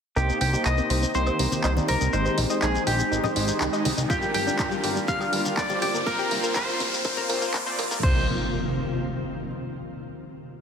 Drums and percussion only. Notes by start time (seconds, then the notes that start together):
0.17 shekere
0.29 shekere
0.41 open hi-hat
0.54 shekere
0.65 clap, shekere
0.78 shekere
0.90 open hi-hat
1.03 shekere
1.15 shekere
1.26 high woodblock, shekere
1.39 open hi-hat
1.52 high conga, shekere
1.64 clap, shekere
1.77 high conga, shekere
1.88 open hi-hat, low conga
2.01 shekere
2.13 shekere
2.26 shekere
2.38 open hi-hat
2.50 shekere
2.62 clap, shekere
2.75 shekere
2.87 open hi-hat
2.99 shekere
3.12 shekere
3.24 low conga, shekere
3.36 open hi-hat
3.48 shekere
3.60 clap, shekere
3.73 shekere
3.85 open hi-hat, high conga
3.98 shekere
4.10 kick, shekere
4.22 shekere
4.34 open hi-hat
4.47 shekere
4.58 kick, clap, shekere
4.71 shekere
4.84 open hi-hat
4.96 shekere
5.08 kick, shekere
5.21 high woodblock, shekere
5.33 open hi-hat
5.45 high conga, shekere
5.57 kick, clap, shekere
5.69 high conga, shekere
5.82 open hi-hat, low conga
5.95 shekere
6.07 kick, shekere
6.19 shekere
6.31 open hi-hat
6.43 shekere
6.55 kick, clap, shekere
6.68 shekere
6.80 kick, open hi-hat
6.94 shekere
7.04 kick, shekere
7.17 low conga, shekere
7.30 open hi-hat
7.42 shekere
7.54 kick, clap, shekere
7.66 shekere
7.79 open hi-hat, high conga, high woodblock
7.91 shekere
8.03 kick, crash